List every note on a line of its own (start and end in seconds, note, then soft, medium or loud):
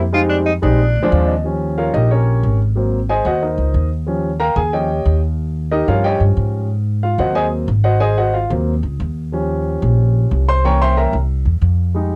0.00 0.57 F2 medium
0.12 0.47 G3 medium
0.12 0.48 G#3 medium
0.12 0.48 C4 medium
0.12 0.48 D#4 medium
0.12 0.21 F4 medium
0.30 0.37 D4 medium
0.46 0.53 D#4 medium
0.62 0.93 A#1 medium
0.62 0.79 G3 medium
0.62 0.79 G#3 medium
0.62 0.79 C4 medium
0.62 1.24 D4 medium
0.62 0.79 D#4 medium
0.95 1.11 D2 medium
1.02 1.32 F3 medium
1.02 1.32 G#3 medium
1.02 1.32 C4 medium
1.02 1.32 D4 loud
1.12 1.88 D#2 medium
1.12 1.27 F5 medium
1.28 1.43 D#5 medium
1.44 1.91 F3 soft
1.44 1.92 G3 soft
1.44 1.92 C#4 medium
1.78 1.94 F4 medium
1.78 1.92 A#4 medium
1.78 1.94 C#5 medium
1.78 1.93 F5 medium
1.94 2.40 A#1 medium
1.94 2.10 D#4 medium
1.94 2.10 G4 medium
1.94 2.10 A#4 medium
1.94 2.10 D#5 medium
2.11 2.57 C#4 medium
2.11 2.57 G4 medium
2.11 2.57 A#4 medium
2.11 2.56 C#5 medium
2.43 3.19 G#1 medium
2.75 2.97 F#3 medium
2.75 2.98 A#3 soft
2.75 2.98 C4 medium
3.09 3.25 G#4 medium
3.09 3.25 C5 medium
3.09 3.25 D#5 medium
3.09 3.25 G#5 medium
3.25 3.55 D#2 medium
3.25 3.42 F#4 medium
3.25 3.41 C5 medium
3.25 3.41 D#5 medium
3.25 3.42 F#5 medium
3.42 3.88 D#4 soft
3.42 3.88 A#4 medium
3.42 3.88 C5 soft
3.42 3.88 D#5 medium
3.58 3.73 C#2 medium
3.74 4.51 D#2 medium
4.07 4.29 F3 medium
4.07 4.29 G3 soft
4.07 4.29 C#4 medium
4.40 4.56 A#4 medium
4.40 4.56 F5 medium
4.40 4.56 G5 medium
4.40 4.56 A#5 medium
4.56 5.02 D#2 medium
4.56 4.72 G#4 medium
4.56 4.72 G#5 medium
4.73 4.87 F3 soft
4.73 4.88 G3 soft
4.73 4.88 C#4 medium
4.73 5.19 G4 medium
4.73 5.19 C#5 medium
4.73 5.19 D#5 medium
4.73 5.19 G5 medium
5.06 5.82 D#2 medium
5.72 5.88 D#4 medium
5.72 5.88 G4 medium
5.72 5.87 A#4 medium
5.72 5.87 D#5 medium
5.88 6.18 G2 medium
5.88 6.66 F3 soft
5.88 6.66 G3 soft
5.88 6.66 C#4 medium
5.88 6.04 F4 medium
5.88 6.04 A#4 medium
5.88 6.03 C#5 medium
5.88 6.04 F5 medium
6.04 6.20 G4 medium
6.04 6.20 C#5 medium
6.04 6.20 D#5 medium
6.04 6.20 G5 medium
6.20 6.36 G2 medium
6.37 7.13 G#2 medium
7.03 7.19 F4 medium
7.03 7.19 F5 medium
7.18 7.64 D#2 medium
7.18 7.66 F#3 soft
7.18 7.66 A#3 soft
7.18 7.66 C4 medium
7.18 7.35 F#4 medium
7.18 7.34 C5 medium
7.18 7.34 D#5 medium
7.18 7.35 F#5 medium
7.35 7.45 G#4 medium
7.35 7.45 C5 medium
7.35 7.45 D#5 medium
7.35 7.45 G#5 loud
7.68 8.44 G#1 medium
7.84 8.01 F#4 medium
7.84 7.99 C5 medium
7.84 7.99 D#5 medium
7.84 8.00 F#5 medium
8.00 8.17 G#4 medium
8.00 8.17 C5 medium
8.00 8.17 D#5 medium
8.00 8.17 G#5 loud
8.18 8.34 F#4 medium
8.18 8.34 C5 medium
8.18 8.34 D#5 medium
8.18 8.34 F#5 medium
8.34 8.50 F4 medium
8.34 8.50 F5 medium
8.50 8.81 D#2 medium
8.50 8.72 F#3 medium
8.50 8.72 A#3 soft
8.50 8.72 C4 medium
8.83 8.98 C#2 medium
9.00 9.76 D#2 medium
9.32 10.60 F3 soft
9.32 10.60 G3 soft
9.32 10.60 C#4 medium
9.82 10.28 A#1 medium
10.31 11.07 C2 medium
10.49 10.64 C5 medium
10.49 10.64 C6 loud
10.64 11.11 E3 medium
10.64 11.11 A#3 soft
10.64 11.11 C#4 medium
10.64 10.80 C#5 medium
10.64 10.80 G5 medium
10.64 10.80 A#5 medium
10.64 10.80 C#6 loud
10.81 10.97 C5 medium
10.81 10.96 E5 medium
10.81 10.96 G5 medium
10.81 10.97 C6 loud
10.97 11.13 A#4 medium
10.97 11.13 E5 medium
10.97 11.13 G5 medium
10.97 11.13 A#5 medium
11.13 11.43 C2 medium
11.45 11.61 E2 medium
11.62 12.16 F2 medium
11.94 12.16 G3 medium
11.94 12.16 G#3 soft
11.94 12.16 D#4 medium